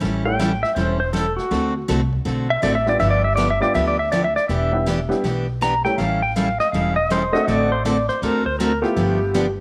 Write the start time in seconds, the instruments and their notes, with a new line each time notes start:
0.00 upright bass A1, steel-string acoustic guitar E3 G3 C#4 E4 A4, brush sweep, snare
0.25 honky-tonk piano G3 A3 C#4 E4 G4, pedal steel guitar G5
0.39 steel-string acoustic guitar E3 G3 C#4 E4 A4, snare, hi-hat pedal
0.63 pedal steel guitar E5, snare
0.75 upright bass E1, steel-string acoustic guitar E3 G3 C#4 E4 A4, pedal steel guitar C5, brush sweep, snare
1.00 pedal steel guitar C5
1.13 steel-string acoustic guitar E3 G3 C#4 E4 A4, pedal steel guitar A4, snare, hi-hat pedal
1.36 pedal steel guitar F#4, snare
1.51 upright bass D2, steel-string acoustic guitar D3 A3 C4 F#4 A4, brush sweep, snare
1.88 upright bass C2, steel-string acoustic guitar D3 A3 C4 F#4 A4, snare, hi-hat pedal
2.13 kick
2.25 upright bass B1, steel-string acoustic guitar D3 A3 C4 F#4 A4, brush sweep, snare
2.50 pedal steel guitar E5
2.62 upright bass A1, steel-string acoustic guitar D3 A3 C4 F#4 A4, pedal steel guitar D5, snare, hi-hat pedal
2.75 pedal steel guitar E5
2.86 honky-tonk piano G3 B3 D4 F4 G4, pedal steel guitar D5, snare
2.99 upright bass G1, steel-string acoustic guitar D3 F3 B3 D4 G4, pedal steel guitar E5, brush sweep, snare
3.11 pedal steel guitar D5
3.24 pedal steel guitar E5
3.36 steel-string acoustic guitar D3 F3 B3 D4 G4, pedal steel guitar D5, snare, hi-hat pedal
3.50 pedal steel guitar E5
3.60 honky-tonk piano G3 B3 D4 F4 G4, pedal steel guitar D5, snare
3.74 upright bass D2, steel-string acoustic guitar D3 F3 B3 D4 G4, pedal steel guitar E5, brush sweep, snare
3.88 pedal steel guitar D5
3.99 pedal steel guitar E5
4.12 steel-string acoustic guitar D3 F3 B3 D4 G4, pedal steel guitar D5, snare, hi-hat pedal
4.24 pedal steel guitar E5
4.36 pedal steel guitar D5, snare
4.48 upright bass E1, steel-string acoustic guitar E3 B3 D4 G4, pedal steel guitar E5, brush sweep, snare
4.72 honky-tonk piano G3 B3 D4 E4 G4
4.86 steel-string acoustic guitar E3 B3 D4 G4, snare, hi-hat pedal
5.09 honky-tonk piano G3 B3 D4 E4 G4, snare
5.24 upright bass B1, steel-string acoustic guitar E3 B3 D4 G4, brush sweep, snare
5.61 steel-string acoustic guitar E3 B3 D4 G4, pedal steel guitar A#5, snare, hi-hat pedal
5.84 honky-tonk piano G3 A3 C#4 E4 G4, pedal steel guitar G5, snare
5.98 upright bass A1, steel-string acoustic guitar E3 G3 C#4 E4 A4, pedal steel guitar F5, brush sweep, snare
6.22 pedal steel guitar G5
6.36 steel-string acoustic guitar E3 G3 C#4 E4 A4, pedal steel guitar F5, snare, hi-hat pedal
6.60 pedal steel guitar D#5, snare
6.72 upright bass E1, steel-string acoustic guitar E3 G3 C#4 E4 A4, pedal steel guitar F5, brush sweep, snare
6.96 pedal steel guitar D#5
7.10 steel-string acoustic guitar E3 G3 C#4 E4 A4, pedal steel guitar C5, snare, hi-hat pedal
7.33 honky-tonk piano A3 C4 D4 F#4 A4, pedal steel guitar D#5, snare
7.48 upright bass A1, steel-string acoustic guitar D3 A3 C4 F#4 A4, pedal steel guitar D5, brush sweep, snare
7.72 pedal steel guitar C5
7.85 steel-string acoustic guitar D3 A3 C4 F#4 A4, pedal steel guitar D5, snare, hi-hat pedal
8.08 pedal steel guitar C5, snare
8.22 upright bass D2, steel-string acoustic guitar D3 A3 C4 F#4 A4, pedal steel guitar A#4, brush sweep, snare
8.46 pedal steel guitar C5, kick
8.59 steel-string acoustic guitar D3 A3 C4 F#4 A4, pedal steel guitar A#4, snare, hi-hat pedal
8.82 honky-tonk piano A3 B3 E4 F4 G4, pedal steel guitar G4, snare
8.96 upright bass G1, steel-string acoustic guitar D3 F3 B3 D4 G4, brush sweep, snare
9.34 steel-string acoustic guitar D3 F3 B3 D4 G4, snare, hi-hat pedal